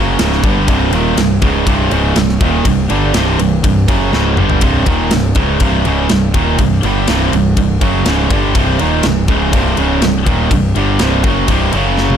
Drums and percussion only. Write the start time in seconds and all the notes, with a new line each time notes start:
0.19 snare, ride
0.32 snare
0.43 kick, ride
0.68 kick, ride
0.93 ride
1.17 snare, ride
1.42 kick, ride
1.67 kick, ride
1.91 ride
2.16 snare, ride
2.29 snare
2.41 kick, ride
2.65 kick, ride
2.90 ride
3.14 snare, ride
3.39 ride
3.64 kick, ride
3.88 kick, ride
4.13 snare
4.37 mid tom
4.50 floor tom
4.61 kick, ride
4.86 kick, ride
5.11 snare, ride
5.35 kick, ride
5.60 kick, ride
5.85 ride
6.09 snare, ride
6.34 kick, ride
6.58 kick, ride
6.83 ride
7.08 snare, ride
7.33 ride
7.57 kick, ride
7.81 kick, ride
8.06 snare, ride
8.30 kick, ride
8.55 kick, ride
8.79 ride
9.03 snare, ride
9.28 kick, ride
9.53 kick, ride
9.77 ride
10.02 snare, ride
10.26 kick, ride
10.51 kick, ride
10.76 ride
10.99 snare, ride
11.24 kick, ride
11.48 kick, ride
11.73 ride
11.97 snare
12.10 high tom